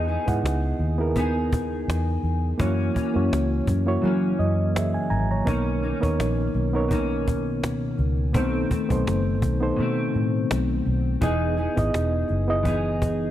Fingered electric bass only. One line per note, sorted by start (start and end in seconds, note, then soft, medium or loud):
0.00 0.16 E2 medium
0.28 0.41 G#2 medium
0.43 0.72 C#2 medium
0.79 1.83 D#2 medium
1.88 2.17 E2 medium
2.23 2.52 E2 medium
2.60 2.88 F#2 medium
3.16 3.28 F#2 medium
3.31 3.60 C#2 medium
3.67 3.96 F#2 medium
4.03 4.32 F#3 loud
4.39 4.97 F#2 medium
5.11 5.40 G#1 medium
5.47 5.92 B1 medium
6.03 6.16 D#2 medium
6.19 6.48 A#1 medium
6.55 7.63 B1 medium
7.63 7.92 C#2 medium
7.99 8.35 C#2 medium
8.35 8.63 B1 medium
8.90 9.03 B1 medium
9.07 9.42 F#1 medium
9.42 9.71 B1 medium
9.79 10.08 B2 medium
10.15 10.44 A2 medium
10.51 10.80 B1 medium
10.86 11.15 B1 medium
11.22 11.66 E1 medium
11.77 11.90 G#1 medium
11.94 12.23 E1 medium
12.30 13.31 F#1 medium